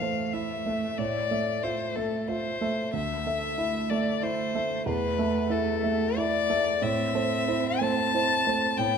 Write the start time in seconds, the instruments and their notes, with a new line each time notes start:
Already playing: grand piano A2 E3 C5 E5, cello A3, violin F5
0.00 grand piano A3 C5
0.33 grand piano E4 E5, violin E5
0.66 grand piano A3 E5
0.98 grand piano A2, violin D5
1.31 grand piano A3 E5
1.63 grand piano F4 E5, violin C5
1.95 grand piano A3 E5, violin A4
2.27 grand piano F4 E5, violin C5
2.61 grand piano A3 E5
2.93 grand piano D2, cello A3, violin E5
3.26 grand piano A3 E5
3.58 grand piano E4 E5
3.90 grand piano A3 E5, violin D5
4.22 grand piano E4 E5, violin C5
4.55 grand piano A3 E5
4.86 grand piano E2, violin B4
5.19 grand piano A3 E5
5.50 grand piano E4 E5, violin A4
5.84 grand piano A3 E5
6.17 grand piano E4 E5, violin D5
6.50 grand piano A3 E5
6.82 grand piano A2, cello C4, violin E5
7.14 grand piano A3 C5
7.48 grand piano E4 C5
7.81 grand piano A3 C5, violin A5
8.14 grand piano E4 C5
8.47 grand piano A3 C5
8.77 grand piano A2, cello B3, violin G5